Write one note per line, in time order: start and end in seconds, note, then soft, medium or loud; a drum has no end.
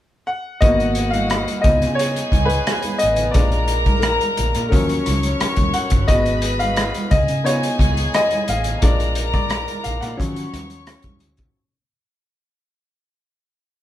0.27 0.63 F#5 medium
0.61 1.44 G#1 medium
0.61 1.61 A#3 soft
0.61 1.61 B3 soft
0.61 1.63 F#4 medium
0.61 1.61 F#4 soft
0.61 1.14 D#5 medium
0.61 1.63 F#5 medium
0.61 kick loud
0.61 closed hi-hat medium
0.61 muted conga soft
0.61 low conga medium
0.79 closed hi-hat soft
0.79 muted conga soft
0.95 closed hi-hat medium
1.11 1.65 F5 medium
1.11 closed hi-hat soft
1.11 high conga medium
1.30 cross-stick medium
1.30 closed hi-hat medium
1.48 closed hi-hat soft
1.48 high conga soft
1.62 1.84 C#2 medium
1.62 3.31 B3 soft
1.62 3.31 D#4 soft
1.62 3.32 F4 soft
1.62 3.32 G#4 medium
1.62 1.98 D#5 medium
1.62 3.32 G#5 medium
1.62 kick medium
1.62 closed hi-hat medium
1.62 low conga medium
1.82 2.22 C#3 medium
1.82 cross-stick soft
1.82 closed hi-hat soft
1.95 2.44 C#5 medium
1.95 muted conga soft
1.99 closed hi-hat medium
2.16 closed hi-hat soft
2.16 muted conga soft
2.32 2.59 C#2 medium
2.32 kick medium
2.32 closed hi-hat medium
2.32 high conga medium
2.45 3.01 B4 medium
2.50 closed hi-hat soft
2.67 cross-stick loud
2.67 closed hi-hat medium
2.82 closed hi-hat medium
2.82 high conga medium
2.98 3.32 D#5 medium
2.98 closed hi-hat medium
3.03 3.29 A1 medium
3.16 closed hi-hat medium
3.16 low conga medium
3.31 4.17 A#1 loud
3.31 4.33 G#3 soft
3.31 4.34 D4 soft
3.31 4.04 D5 medium
3.31 4.69 A#5 medium
3.31 kick loud
3.31 closed hi-hat medium
3.31 muted conga soft
3.31 low conga medium
3.35 4.34 F4 soft
3.35 4.70 A#4 medium
3.52 closed hi-hat soft
3.52 muted conga soft
3.68 closed hi-hat medium
3.86 kick medium
3.86 closed hi-hat soft
3.86 high conga medium
4.00 4.67 A#4 medium
4.00 cross-stick loud
4.00 closed hi-hat medium
4.04 muted conga soft
4.21 closed hi-hat soft
4.21 high conga medium
4.37 4.51 A#1 medium
4.37 closed hi-hat medium
4.37 low conga medium
4.55 4.74 A#2 medium
4.55 cross-stick soft
4.55 closed hi-hat soft
4.69 6.05 F3 medium
4.69 6.04 F#3 soft
4.69 6.04 C#4 soft
4.69 5.35 A#4 medium
4.69 6.06 C#5 medium
4.69 kick medium
4.69 closed hi-hat medium
4.73 4.99 D#2 medium
4.73 6.07 C#6 medium
4.89 closed hi-hat medium
5.06 5.33 C#2 medium
5.06 cross-stick soft
5.06 closed hi-hat medium
5.06 high conga medium
5.23 closed hi-hat soft
5.40 muted fingered electric bass stroke soft
5.40 cross-stick loud
5.40 closed hi-hat medium
5.56 5.70 D#2 medium
5.56 kick medium
5.56 closed hi-hat medium
5.56 high conga medium
5.74 6.09 F#5 medium
5.74 closed hi-hat medium
5.90 6.05 G1 medium
5.90 kick medium
5.90 closed hi-hat medium
5.90 low conga medium
6.07 6.91 G#1 loud
6.07 6.54 G#3 soft
6.07 6.54 B3 soft
6.07 6.54 F#4 soft
6.07 7.10 B4 medium
6.07 6.61 D#5 medium
6.07 7.10 B5 medium
6.07 kick loud
6.07 closed hi-hat medium
6.07 muted conga soft
6.07 low conga medium
6.26 closed hi-hat soft
6.42 closed hi-hat medium
6.59 7.13 F5 medium
6.59 closed hi-hat soft
6.59 high conga medium
6.76 cross-stick loud
6.76 closed hi-hat medium
6.76 muted conga soft
6.94 closed hi-hat soft
6.94 muted conga soft
6.94 high conga medium
7.11 7.25 C#2 medium
7.11 8.80 G#4 medium
7.11 7.46 D#5 medium
7.11 8.80 G#5 medium
7.11 kick medium
7.11 closed hi-hat medium
7.11 low conga medium
7.28 7.68 C#3 medium
7.28 closed hi-hat soft
7.44 8.78 B3 soft
7.44 8.78 D#4 soft
7.44 8.78 F4 medium
7.44 8.16 C#5 medium
7.44 closed hi-hat medium
7.44 muted conga soft
7.63 closed hi-hat medium
7.63 muted conga soft
7.79 8.06 C#2 medium
7.79 kick medium
7.79 closed hi-hat medium
7.79 high conga medium
7.97 closed hi-hat soft
8.14 8.50 D#5 medium
8.14 cross-stick loud
8.14 closed hi-hat medium
8.14 muted conga soft
8.31 closed hi-hat soft
8.31 high conga medium
8.48 8.75 A1 medium
8.48 8.81 F5 medium
8.48 closed hi-hat medium
8.64 closed hi-hat medium
8.64 low conga medium
8.82 9.64 A#1 medium
8.82 10.15 G#3 soft
8.82 10.15 D4 soft
8.82 10.15 F4 medium
8.82 10.17 A#4 medium
8.82 9.32 D5 medium
8.82 10.17 A#5 medium
8.82 kick loud
8.82 closed hi-hat medium
8.82 low conga medium
9.00 closed hi-hat soft
9.00 muted conga soft
9.15 closed hi-hat medium
9.33 9.81 D5 medium
9.33 kick medium
9.33 closed hi-hat soft
9.33 high conga medium
9.50 cross-stick loud
9.50 closed hi-hat medium
9.50 muted conga soft
9.68 closed hi-hat soft
9.68 muted conga soft
9.68 high conga soft
9.84 9.99 A#1 medium
9.84 10.02 F5 medium
9.84 closed hi-hat medium
9.84 low conga medium
10.01 10.15 A#2 medium
10.01 11.17 F#5 medium
10.01 cross-stick soft
10.01 closed hi-hat soft
10.17 10.46 D#3 medium
10.17 10.64 F3 medium
10.17 10.64 F#3 soft
10.17 10.64 C#4 soft
10.17 11.53 C#5 medium
10.17 11.53 C#6 medium
10.17 kick medium
10.17 closed hi-hat medium
10.17 muted conga soft
10.36 closed hi-hat soft
10.36 muted conga soft
10.53 10.93 D#2 medium
10.53 cross-stick soft
10.53 closed hi-hat medium
10.53 high conga medium
10.70 closed hi-hat soft
10.87 cross-stick loud
10.87 closed hi-hat medium
11.02 11.22 F2 medium
11.02 kick medium
11.02 closed hi-hat soft
11.02 muted conga soft
11.02 high conga medium
11.20 11.48 D2 medium
11.20 closed hi-hat medium
11.37 kick medium
11.37 closed hi-hat medium
11.37 low conga medium